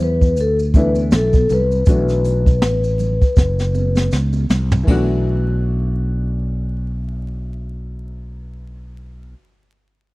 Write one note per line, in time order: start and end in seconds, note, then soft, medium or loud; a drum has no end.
0.00 0.38 E2 medium
0.00 0.40 B4 medium
0.00 low conga medium
0.00 maracas soft
0.21 kick medium
0.21 maracas soft
0.37 1.14 D2 medium
0.37 closed hi-hat medium
0.37 maracas medium
0.41 0.57 A4 medium
0.59 maracas soft
0.74 1.29 E3 medium
0.74 1.30 A3 medium
0.74 1.30 D4 medium
0.74 1.30 E4 medium
0.74 kick medium
0.74 closed hi-hat medium
0.74 high conga medium
0.74 maracas soft
0.78 0.94 B4 medium
0.95 high conga medium
0.95 maracas soft
1.12 1.48 B1 medium
1.12 1.52 A4 loud
1.12 snare loud
1.12 closed hi-hat medium
1.12 maracas medium
1.33 kick medium
1.33 high conga medium
1.33 maracas soft
1.49 1.86 C2 medium
1.49 4.10 B4 medium
1.49 closed hi-hat medium
1.49 low conga medium
1.49 maracas soft
1.71 maracas soft
1.86 2.62 B1 medium
1.86 2.42 E3 medium
1.86 2.42 A3 medium
1.86 2.42 D4 medium
1.86 2.43 F#4 medium
1.86 kick loud
1.86 closed hi-hat loud
1.86 maracas medium
2.09 snare soft
2.09 maracas soft
2.25 closed hi-hat medium
2.25 maracas soft
2.46 kick medium
2.46 maracas soft
2.62 3.19 A1 medium
2.62 snare loud
2.62 closed hi-hat medium
2.62 high conga soft
2.62 maracas medium
2.84 maracas soft
2.99 closed hi-hat medium
2.99 low conga medium
2.99 maracas soft
3.21 muted fretless electric bass stroke soft
3.21 kick medium
3.21 maracas soft
3.36 4.08 F#1 loud
3.36 kick loud
3.36 snare medium
3.36 maracas medium
3.59 snare medium
3.59 maracas soft
3.75 high conga medium
3.75 maracas soft
3.95 snare medium
3.95 high conga medium
3.95 maracas soft
4.12 4.48 C#2 medium
4.12 snare medium
4.12 maracas medium
4.33 high conga medium
4.33 maracas soft
4.50 4.85 C2 medium
4.50 snare loud
4.50 low conga medium
4.50 maracas soft
4.72 floor tom medium
4.72 maracas soft
4.83 9.31 E3 medium
4.83 9.32 A3 medium
4.83 kick medium
4.83 high conga medium
4.87 9.33 B1 medium
4.87 9.34 D4 medium
4.87 9.35 F#4 medium
4.87 crash medium